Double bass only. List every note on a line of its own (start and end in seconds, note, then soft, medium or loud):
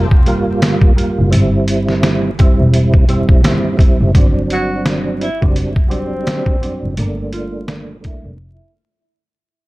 0.00 0.59 F1 medium
1.19 1.31 F#1 loud
1.33 2.55 G1 loud
2.59 3.40 E1 medium
4.01 4.13 F#1 medium
4.15 5.37 G1 loud
5.43 6.23 F#1 medium
6.83 6.96 F#1 medium
6.98 8.20 G1 loud
8.24 8.38 F1 medium